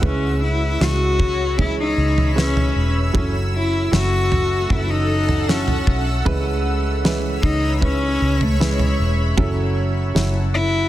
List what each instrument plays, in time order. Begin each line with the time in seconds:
Already playing: ambient pad E6
0.01 fingered electric bass C#2, upright piano C#3 G#3 C#4 E4 B4, ambient pad C#5 B5, kick, floor tom
0.05 cello C#4
0.44 cello E4
0.80 fingered electric bass C#2, upright piano G#3 C#4 E4 F#4, cello F#4, snare
1.19 kick, floor tom
1.58 upright piano E3 G#3 C#4 G#4, cello E4, kick, floor tom
1.80 cello D#4
1.98 fingered electric bass C#2
2.18 floor tom
2.35 upright piano G#3 C#4 E4 B4, cello C#4, snare
2.57 floor tom
2.76 fingered electric bass E1
3.13 fingered electric bass F#1, upright piano F#3 C#4 E4 A4, cello C#4, ambient pad A4 F#5, kick, floor tom
3.55 cello E4
3.92 fingered electric bass F#1, upright piano F#3 C#4 E4 F#4, cello F#4, snare
4.32 floor tom
4.69 fingered electric bass F#1, upright piano E3 F#3 C#4 A4, cello E4, kick, floor tom
4.91 cello D#4
5.29 floor tom
5.48 upright piano F#3 C#4 E4 A4, cello C#4, snare
5.68 floor tom
5.87 fingered electric bass B1, kick
6.25 fingered electric bass C#2, upright piano C#3 G#3 C#4 E4 B4, ambient pad C#5 B5, kick, floor tom
7.04 upright piano E3 G#3 C#4 B4, snare
7.43 fingered electric bass C#2, cello D#4, kick
7.80 upright piano G#3 C#4 E4 B4, cello C#4, kick, floor tom
8.22 fingered electric bass C#2
8.41 cello A3, floor tom
8.60 upright piano G#3 C#4 E4 B4, cello G#3, snare
8.79 floor tom
8.99 fingered electric bass E1
9.37 fingered electric bass F#1, upright piano F#3 C#4 E4 A4, ambient pad A4 F#5 E6, kick, floor tom
10.15 fingered electric bass F#1, upright piano F#3 C#4 E4 F#4, snare
10.54 cello E4